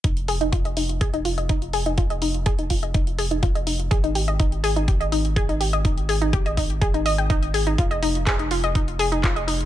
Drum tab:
HH |xxoxxxoxxxoxxxox|xxoxxxoxxxoxxxox|xxoxxxoxxxoxxxox|xxoxxxoxxxoxxxox|
CP |----------------|----------------|----------------|----------------|
BD |o---o---o---o---|o---o-o-o---o---|o---o---o---o---|o---o-o-o---o---|

HH |xxoxxxoxxxoxxxox|
CP |----x-------x---|
BD |o---o---o---o---|